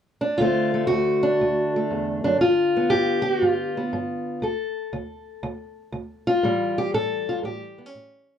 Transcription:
0.21 0.37 D4 medium
0.38 0.86 D2 medium
0.38 4.43 D3 soft
0.38 0.73 A3 soft
0.38 0.87 F4 medium
0.42 1.22 C4 soft
0.74 1.74 A3 soft
0.87 1.37 D2 medium
0.87 1.73 F#4 loud
1.23 2.23 D4 medium
1.41 1.88 D2 medium
1.76 2.40 A3 soft
1.91 2.24 E2 medium
2.24 2.41 F#2 medium
2.24 2.41 D4 medium
2.41 2.88 G2 medium
2.41 3.21 F4 medium
2.77 3.76 B3 soft
2.90 3.39 G2 medium
2.90 3.75 G4 loud
3.22 3.46 F#4 medium
3.42 3.89 G2 medium
3.42 4.40 F4 medium
3.77 4.41 B3 soft
3.93 4.39 G2 medium
4.42 4.89 D2 medium
4.42 6.48 A4 soft
4.93 5.39 D2 medium
5.43 5.90 D2 medium
5.92 6.39 D2 medium
6.27 6.77 F4 medium
6.43 6.90 A2 medium
6.43 8.38 E3 soft
6.43 8.38 G3 soft
6.78 6.94 G4 medium
6.94 7.41 A2 medium
6.94 7.44 A4 loud
7.29 7.38 F4 medium
7.43 7.90 A2 medium
7.43 8.38 G4 medium
7.78 7.86 B3 soft
7.86 8.38 C#4 soft
7.95 8.38 A2 medium

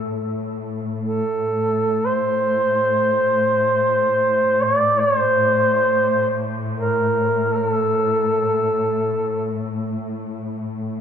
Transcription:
0.00 0.26 A2 soft
0.27 11.01 A2 soft
1.05 2.07 A4 medium
2.06 4.65 C5 medium
4.63 5.01 D5 medium
5.00 5.18 C#5 medium
5.18 6.47 C5 medium
6.78 7.55 A#4 medium
7.55 7.68 A#4 medium
7.68 9.55 A4 medium

